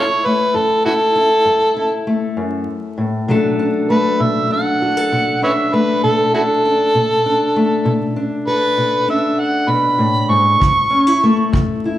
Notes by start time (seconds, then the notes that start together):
Already playing: F#2 A3 E4 A4 C#5
0.25 A3 B4
0.54 F#2 A4
0.86 E4 F#4 A4
1.16 E4
1.45 F#2
1.77 E4
2.07 A3
2.37 F#2
2.98 A2
3.28 B2 F#3 A3 D4 A4
3.59 D4
3.90 A3 B4
4.20 B2 E5
4.51 D4 F#5
4.82 F#4
4.97 A4
5.12 B2
5.42 D4 B4 C#5 E5
5.73 A3 B4
6.04 B2 A4
6.34 D4 E4 F#4 A4
6.65 D4
6.95 B2
7.26 D4
7.56 A3
7.85 B2
8.16 D4
8.47 A4 B4
8.78 B2
9.08 D4 E5
9.39 F#5
9.67 B2 B5
9.98 A2
10.29 G#2 C#6
10.60 F#2, kick
10.90 C#4
11.07 E4
11.23 A3
11.53 F#2, kick
11.85 E4